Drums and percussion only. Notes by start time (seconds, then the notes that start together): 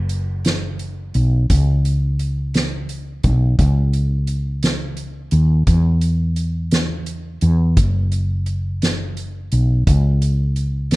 0.09 closed hi-hat
0.45 snare, closed hi-hat
0.79 closed hi-hat
1.14 closed hi-hat
1.50 kick, closed hi-hat
1.85 closed hi-hat
2.19 closed hi-hat
2.54 snare, closed hi-hat
2.89 closed hi-hat
3.23 kick, closed hi-hat
3.59 kick, closed hi-hat
3.93 closed hi-hat
4.27 closed hi-hat
4.63 snare, closed hi-hat
4.97 closed hi-hat
5.31 closed hi-hat
5.67 kick, closed hi-hat
6.01 closed hi-hat
6.36 closed hi-hat
6.71 snare, closed hi-hat
7.06 closed hi-hat
7.41 closed hi-hat
7.77 kick, closed hi-hat
8.12 closed hi-hat
8.46 closed hi-hat
8.82 snare, closed hi-hat
9.17 closed hi-hat
9.52 closed hi-hat
9.87 kick, closed hi-hat
10.22 closed hi-hat
10.56 closed hi-hat
10.91 snare, closed hi-hat